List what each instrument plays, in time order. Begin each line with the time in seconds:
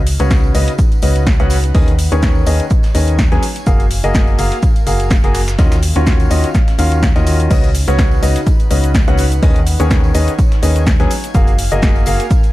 Already playing: fm bass C#2, analog synth pad C#4 D#4
0.06 open hi-hat, tambourine, shaker
0.19 fm bass C#2, grand piano C#3 C#4 F#4 B4 C#5, closed hi-hat, tambourine
0.31 kick, snare, closed hi-hat, tambourine, shaker
0.36 analog synth pad B4
0.44 tambourine
0.49 analog synth pad F#5
0.55 fm bass C#2, grand piano C#3 C#4 F#4 B4 D#5, open hi-hat, tambourine, shaker
0.68 closed hi-hat, tambourine
0.78 kick, closed hi-hat, tambourine, shaker
0.92 closed hi-hat, tambourine
1.02 fm bass C#2, grand piano C#3 C#4 F#4 B4 D#5, open hi-hat, tambourine, shaker
1.16 closed hi-hat, tambourine
1.27 kick, snare, closed hi-hat, tambourine, shaker
1.40 fm bass C#2, grand piano C#3 C#4 F#4 B4 F#5, snare, closed hi-hat
1.50 snare, open hi-hat, tambourine, shaker
1.64 closed hi-hat, tambourine
1.75 fm bass D#2, grand piano D#3 C#4 G#4 B4 D#5, kick, closed hi-hat, open hi-hat, tambourine
1.88 closed hi-hat, tambourine
1.99 open hi-hat, tambourine, shaker
2.12 fm bass D#2, grand piano D#3 C#4 G#4 B4 C#5, analog synth pad C#5, closed hi-hat, tambourine
2.22 kick, snare, closed hi-hat, tambourine, shaker
2.35 tambourine
2.46 fm bass D#2, grand piano D#3 C#4 G#4 B4 D#5, open hi-hat, tambourine, shaker
2.51 analog synth pad G#5
2.60 closed hi-hat, tambourine
2.70 kick, closed hi-hat, tambourine, shaker
2.83 snare, closed hi-hat, tambourine
2.95 fm bass D#2, grand piano D#3 C#4 G#4 B4 D#5, open hi-hat, tambourine, shaker
3.07 closed hi-hat, tambourine
3.19 kick, snare, closed hi-hat, tambourine, shaker
3.32 fm bass D#2, grand piano F#3 C#4 G#4 B4 G#5, snare, closed hi-hat
3.43 analog synth pad F5, open hi-hat, tambourine, shaker
3.56 closed hi-hat, tambourine
3.66 fm bass F#1, grand piano A#3 F#4 G#4 F5, kick, closed hi-hat, tambourine, shaker
3.80 analog synth pad A#4, closed hi-hat, tambourine
3.91 open hi-hat, tambourine, shaker
4.04 fm bass F#1, grand piano A#3 F#4 G#4 D#5, closed hi-hat
4.15 kick, snare, closed hi-hat, tambourine, shaker
4.27 tambourine
4.39 fm bass F#1, grand piano A#3 F#4 G#4 F5, open hi-hat, tambourine, shaker
4.52 closed hi-hat, tambourine
4.63 kick, closed hi-hat, tambourine, shaker
4.76 closed hi-hat, tambourine
4.87 fm bass F#1, grand piano A#3 F#4 G#4 F5, open hi-hat, tambourine, shaker
5.00 closed hi-hat, tambourine
5.11 kick, snare, closed hi-hat, tambourine, shaker
5.24 fm bass F#1, grand piano A#3 F#4 G#4 G#5, snare, closed hi-hat
5.35 snare, open hi-hat, tambourine, shaker
5.48 snare, closed hi-hat, tambourine, shaker
5.59 fm bass D#2, grand piano D#3 C#4 F4 F#4 D#5, analog synth pad C#4, kick, snare, closed hi-hat, tambourine, shaker
5.72 analog synth pad F5, snare, closed hi-hat, tambourine, shaker
5.83 open hi-hat, tambourine, shaker
5.96 fm bass D#2, grand piano D#3 C#4 F4 F#4 C#5, closed hi-hat, tambourine
6.06 kick, snare, closed hi-hat, tambourine, shaker
6.20 closed hi-hat, tambourine
6.31 fm bass D#2, grand piano D#3 C#4 F4 F#4 D#5, open hi-hat, tambourine, shaker
6.44 closed hi-hat, tambourine
6.55 kick, snare, closed hi-hat, tambourine, shaker
6.68 snare, closed hi-hat, tambourine
6.79 fm bass D#2, grand piano D#3 C#4 F4 F#4 F5, open hi-hat, tambourine, shaker
6.92 closed hi-hat, tambourine
7.03 kick, snare, closed hi-hat, tambourine, shaker
7.16 fm bass D#2, grand piano D#3 C#4 F4 F#4 D#5, snare, closed hi-hat, tambourine
7.27 open hi-hat, tambourine, shaker
7.39 closed hi-hat, tambourine
7.51 fm bass C#2, grand piano C#3 C#4 F#4 B4 D#5, analog synth pad D#4, kick, closed hi-hat, crash, tambourine, shaker
7.64 closed hi-hat, tambourine
7.75 analog synth pad B4, open hi-hat, tambourine, shaker
7.88 fm bass C#2, grand piano C#3 C#4 F#4 B4 C#5, closed hi-hat, tambourine, shaker
7.99 kick, snare, closed hi-hat, tambourine, shaker
8.11 tambourine
8.23 fm bass C#2, grand piano C#3 C#4 F#4 B4 D#5, open hi-hat, tambourine, shaker
8.36 analog synth pad F#5, closed hi-hat, tambourine, shaker
8.47 kick, closed hi-hat, tambourine, shaker
8.60 closed hi-hat, tambourine
8.71 fm bass C#2, grand piano C#3 C#4 F#4 B4 D#5, open hi-hat, tambourine, shaker
8.84 closed hi-hat, tambourine, shaker
8.95 kick, snare, closed hi-hat, tambourine, shaker
9.08 fm bass C#2, grand piano C#3 C#4 F#4 B4 F#5, snare, closed hi-hat
9.17 snare, open hi-hat, tambourine, shaker
9.31 closed hi-hat, tambourine, shaker
9.42 fm bass D#2, grand piano D#3 C#4 G#4 B4 D#5, kick, closed hi-hat, open hi-hat, tambourine, shaker
9.52 analog synth pad C#5, closed hi-hat
9.56 tambourine
9.66 open hi-hat, tambourine, shaker
9.80 fm bass D#2, grand piano D#3 C#4 G#4 B4 C#5, closed hi-hat, tambourine, shaker
9.91 kick, snare, closed hi-hat, tambourine, shaker
10.04 tambourine
10.14 fm bass D#2, grand piano D#3 C#4 G#4 B4 D#5, open hi-hat, tambourine, shaker
10.19 analog synth pad G#5
10.27 closed hi-hat, tambourine, shaker
10.38 kick, closed hi-hat, tambourine, shaker
10.52 snare, closed hi-hat, tambourine
10.63 fm bass D#2, grand piano D#3 C#4 G#4 B4 D#5, open hi-hat, tambourine, shaker
10.76 closed hi-hat, tambourine, shaker
10.87 kick, snare, closed hi-hat, tambourine, shaker
11.00 fm bass D#2, grand piano F#3 C#4 G#4 B4 G#5, snare, closed hi-hat
11.11 analog synth pad F5, open hi-hat, tambourine, shaker
11.24 closed hi-hat, tambourine, shaker
11.34 fm bass F#1, grand piano A#3 F#4 G#4 F5, kick, closed hi-hat, tambourine, shaker
11.47 analog synth pad A#4, closed hi-hat, tambourine
11.58 open hi-hat, tambourine, shaker
11.72 fm bass F#1, grand piano A#3 F#4 G#4 D#5, closed hi-hat, tambourine, shaker
11.82 kick, snare, closed hi-hat, tambourine, shaker
11.96 tambourine
12.06 fm bass F#1, grand piano A#3 F#4 G#4 F5, open hi-hat, tambourine, shaker
12.20 closed hi-hat, tambourine, shaker
12.31 kick, closed hi-hat, tambourine, shaker
12.43 closed hi-hat, tambourine